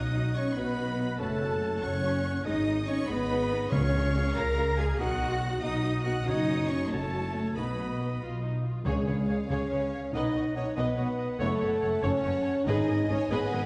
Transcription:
Already playing: B1 D#4 D#5 F#5 D#6
0.14 D#4 F#4
0.34 C#4 D#4 F#4 C#5 C#6
0.55 B1 B3 D#4 F#4 B4 D#5 F#5 B5
0.77 D#4 F#4
0.98 D#4 F#4
1.18 F#1 A3 C#4 F#4 A4 C#5 F#5 A5
1.41 C#4 F#4
1.61 C#4 F#4
1.82 F#1 C#4 F#4 C#5 F#5 C#6
2.03 C#4 F#4
2.24 C#4 F#4
2.45 G#1 G#3 D#4 G#4 D#5 D#6
2.67 G#3 D#4
2.87 G#3 C#4 D#4 C#5 C#6
3.07 G#1 G#3 B3 D#4 G#4 B4 D#5 B5
3.31 G#3 D#4
3.52 G#3 D#4
3.70 C#2 C#3 C#4 F4 C#5 F5 C#6
3.74 G#3 G#4
3.94 G#3 F4
4.15 G#3 F4
4.34 C#2 G#3 F4 A#4 A#5 A#6
4.57 G#3 F4
4.77 G#3 F4 G#4 G#5 G#6
4.81 G#4
4.98 B1 B3 D#4 F#4 D#5 F#5 F#6
5.21 B3 D#4
5.42 B3 D#4
5.61 B1 B3 D#4 F#4 D#5 D#6
5.85 B3 D#4
6.03 B3 D#4 F#4 F#5 F#6
6.24 F#1 C#4 D#4 F#4 C#5 D#6
6.28 D#5
6.48 C#4 F#4
6.67 C#4 F#4 C#5 C#6
6.88 F#1 A3 C#4 F#4 A4 C#5 A5
6.93 A4
7.13 C#4 F#4
7.34 C#4 F#4
7.55 B1 B3 D#4 F#4 B4 D#5 B5
7.78 D#4 F#4
7.99 D#4 F#4
8.20 B1 F4
8.43 D#4
8.64 F4
8.84 C#2 C#3 G#3 G#4 C#5 F5
9.06 C#2 C#3 G#4 B4 C#5 F5
9.28 C#2 C#3 G#4 C#5 F5
9.50 C#2 C#3 C#4 G#4 C#5 F5
9.71 C#2 C#3 G#4 B4 C#5 F5
9.92 C#5 F5
10.13 B1 B2 D#4 B4 D#5 F#5
10.34 B1 B2 B4 C#5 D#5 F#5
10.56 B1 B2 C#4 B4 C#5 D#5 F#5
10.76 B1 B2 B3 B4 D#5 F#5
10.97 B1 B2 B4 C#5 D#5 F#5
11.19 D#5 F#5
11.39 F#1 F#2 A3 A4 C#5 F#5 A5
11.60 F#1 F#2 B4 C#5 F#5
11.81 F#1 F#2 C#5 F#5
12.02 F#1 F#2 C#4 C#5 F#5
12.23 F#1 F#2 B4 C#5 F#5
12.45 C#5 F#5
12.65 G#1 G#2 D#4 G#4 B4 D#5 G#5
12.88 G#1 G#2 G#4 A#4 D#5 G#5
13.09 G#1 G#2 C#4 G#4 B4 C#5 D#5 G#5
13.29 G#1 G#2 B3 G#4 B4 D#5 G#5
13.52 G#1 G#2 G#4 A#4 D#5 G#5

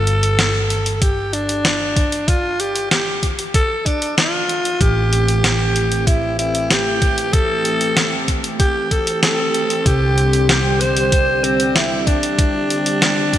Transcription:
Already playing: G1 A4
0.07 closed hi-hat
0.23 closed hi-hat
0.39 snare, closed hi-hat
0.70 closed hi-hat
0.86 closed hi-hat
0.95 A4
1.02 G4, kick, closed hi-hat
1.33 D4, closed hi-hat
1.49 closed hi-hat
1.65 snare, closed hi-hat
1.96 kick, closed hi-hat
2.12 closed hi-hat
2.28 F4, kick, closed hi-hat
2.60 G4, closed hi-hat
2.76 closed hi-hat
2.91 G4, snare, closed hi-hat
3.23 kick, closed hi-hat
3.39 closed hi-hat
3.54 A4, kick, closed hi-hat
3.86 D4, kick, closed hi-hat
4.02 closed hi-hat
4.17 F4, snare, closed hi-hat
4.49 closed hi-hat
4.65 closed hi-hat
4.81 A1 E3 A3 C4 G4, kick, closed hi-hat
5.13 closed hi-hat
5.28 closed hi-hat
5.44 snare, closed hi-hat
5.76 closed hi-hat
5.92 closed hi-hat
6.07 E4, kick, closed hi-hat
6.39 E4, closed hi-hat
6.55 closed hi-hat
6.71 G4, snare, closed hi-hat
7.02 kick, closed hi-hat
7.18 closed hi-hat
7.33 A4, kick, closed hi-hat
7.65 closed hi-hat
7.81 closed hi-hat
7.97 snare, closed hi-hat
8.28 kick, closed hi-hat
8.44 closed hi-hat
8.60 G4, kick, closed hi-hat
8.91 A4, kick, closed hi-hat
9.07 closed hi-hat
9.23 A4, snare, closed hi-hat
9.54 closed hi-hat
9.70 closed hi-hat
9.86 C2 D3 G3 G4, kick, closed hi-hat
10.18 closed hi-hat
10.33 closed hi-hat
10.49 G4, snare, closed hi-hat
10.81 C5, closed hi-hat
10.97 closed hi-hat
11.12 kick, closed hi-hat
11.44 C4, closed hi-hat
11.60 closed hi-hat
11.76 E4, snare, closed hi-hat
12.07 D4, kick, closed hi-hat
12.23 closed hi-hat
12.39 kick, closed hi-hat
12.70 closed hi-hat
12.86 closed hi-hat
13.02 snare, closed hi-hat
13.33 kick, closed hi-hat

